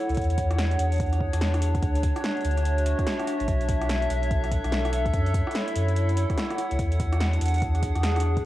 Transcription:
Already playing: ambient pad E4 A4 C#5 F#5
0.09 sub bass C#2, closed hi-hat
0.14 sub bass E2, ambient pad D4, kick, closed hi-hat
0.17 closed hi-hat
0.21 closed hi-hat
0.24 closed hi-hat
0.30 ambient pad G#4, closed hi-hat
0.38 kick, closed hi-hat
0.51 cross-stick, closed hi-hat
0.58 snare, closed hi-hat
0.71 closed hi-hat
0.79 sub bass E2, closed hi-hat
0.92 closed hi-hat
0.94 closed hi-hat
0.96 closed hi-hat
0.98 kick, closed hi-hat
1.00 closed hi-hat
1.06 closed hi-hat
1.10 cross-stick, closed hi-hat
1.13 closed hi-hat
1.21 kick
1.33 sub bass E2, cross-stick, closed hi-hat
1.41 snare, closed hi-hat
1.54 cross-stick, closed hi-hat
1.62 closed hi-hat
1.75 kick, closed hi-hat
1.83 sub bass D2, kick, closed hi-hat
1.95 closed hi-hat
2.03 kick, closed hi-hat
2.16 cross-stick, closed hi-hat
2.21 ambient pad E5, snare, closed hi-hat
2.30 ambient pad F#4
2.37 closed hi-hat
2.41 sub bass D2, closed hi-hat
2.45 closed hi-hat
2.51 closed hi-hat
2.57 cross-stick, closed hi-hat
2.65 closed hi-hat
2.78 closed hi-hat
2.86 closed hi-hat
2.99 kick, cross-stick, closed hi-hat
3.07 snare, closed hi-hat
3.19 cross-stick, closed hi-hat
3.27 cross-stick, closed hi-hat
3.40 sub bass A1, closed hi-hat
3.48 sub bass B1, kick, closed hi-hat
3.61 closed hi-hat
3.69 kick, closed hi-hat
3.78 ambient pad A4, cross-stick, closed hi-hat
3.89 snare, closed hi-hat
4.02 closed hi-hat
4.10 sub bass B1, closed hi-hat
4.23 closed hi-hat
4.31 kick, closed hi-hat
4.44 cross-stick, closed hi-hat
4.52 kick, closed hi-hat
4.64 sub bass B1, cross-stick, closed hi-hat
4.72 snare, closed hi-hat
4.85 cross-stick, closed hi-hat
4.93 closed hi-hat
5.06 kick, closed hi-hat
5.14 sub bass F#2, ambient pad E4, kick, closed hi-hat
5.26 closed hi-hat
5.34 kick, closed hi-hat
5.47 cross-stick, closed hi-hat
5.55 snare, closed hi-hat
5.68 closed hi-hat
5.76 sub bass F#2, closed hi-hat
5.80 ambient pad F#5
5.88 closed hi-hat
5.96 closed hi-hat
6.09 closed hi-hat
6.17 closed hi-hat
6.30 kick, cross-stick, closed hi-hat
6.38 snare, closed hi-hat
6.51 cross-stick, closed hi-hat
6.58 cross-stick, closed hi-hat
6.71 sub bass C#2, closed hi-hat
6.79 sub bass E2, ambient pad D4, kick, closed hi-hat
6.92 closed hi-hat
7.00 kick, closed hi-hat
7.13 ambient pad G#4, cross-stick, closed hi-hat
7.20 snare, closed hi-hat
7.33 closed hi-hat
7.41 sub bass E2, closed hi-hat
7.45 closed hi-hat
7.48 closed hi-hat
7.54 closed hi-hat
7.56 closed hi-hat
7.58 closed hi-hat
7.60 closed hi-hat
7.62 kick, closed hi-hat
7.75 cross-stick, closed hi-hat
7.83 kick, closed hi-hat
7.95 sub bass E2, cross-stick, closed hi-hat
8.03 snare, closed hi-hat
8.16 cross-stick, closed hi-hat
8.20 closed hi-hat
8.37 kick, closed hi-hat

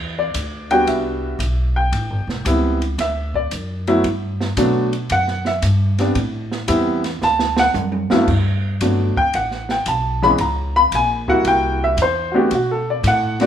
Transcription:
Already playing: upright bass E2, upright piano B4
0.19 upright piano D5
0.34 upright bass D2, hi-hat pedal, ride
0.71 upright piano G3 B3 D4 F#4 G5, ride
0.87 upright bass C2, upright piano E5, ride
1.39 upright bass B1, hi-hat pedal, ride
1.76 upright piano G5
1.92 upright bass A1, ride
2.10 upright bass G1
2.27 upright bass E1, snare
2.45 upright bass C#2, upright piano G3 B3 C4 E4, hi-hat pedal, ride
2.82 ride
2.98 upright bass D2, upright piano E5, snare, ride
3.34 upright piano D5, kick
3.51 upright bass F#2, hi-hat pedal, ride
3.87 upright piano F#3 A3 B3 E4, ride
4.04 upright bass G2, ride
4.41 snare
4.57 upright bass B2, upright piano F#3 A3 B3 D4, hi-hat pedal, ride
4.93 ride
5.10 upright bass F#2, upright piano F#5, ride
5.27 snare
5.45 upright piano E5, snare
5.62 upright bass G2, hi-hat pedal, ride
5.98 upright piano G3 B3 C4 D4, snare, ride
6.15 upright bass A2, ride
6.52 snare
6.68 upright bass E2, upright piano G3 B3 C4 E4, hi-hat pedal, ride
7.04 snare, ride
7.22 upright bass D2, upright piano A5, snare
7.39 snare
7.57 upright piano F#5, snare
7.74 upright bass F#2, hi-hat pedal, high tom
7.92 high tom
8.10 upright piano G2 F#3 A3 B3 E4, muted upright bass stroke, snare
8.28 upright bass G2, kick, crash
8.81 upright bass G1, upright piano F#3 A3 B3 D4, hi-hat pedal, ride
9.16 upright piano G5, muted upright bass stroke, kick
9.33 upright bass A1, upright piano F#5, ride
9.51 snare
9.69 upright piano G5, snare
9.86 upright bass B1, upright piano A5, hi-hat pedal, ride
10.22 upright piano E3 G#3 B3 C#4 B5, snare
10.38 upright bass C#2, upright piano A#5, ride
10.76 upright piano B5
10.92 upright bass A#1, upright piano G#5, hi-hat pedal, ride
11.28 upright piano G3 A#3 E4 F#4 F#5, kick
11.45 upright bass C2, upright piano G5, ride
11.84 upright piano E5
11.97 upright bass E2, hi-hat pedal, ride
12.02 upright piano C5
12.32 upright piano A3 B3 D4 F#4
12.36 upright piano G4
12.51 upright bass B2, ride
12.55 upright piano F#4
12.71 upright piano A4
12.90 upright piano D5
13.03 upright bass A2, hi-hat pedal, ride
13.07 upright piano F#5
13.40 upright piano A3 B3 D4 F#4 D5, snare, ride

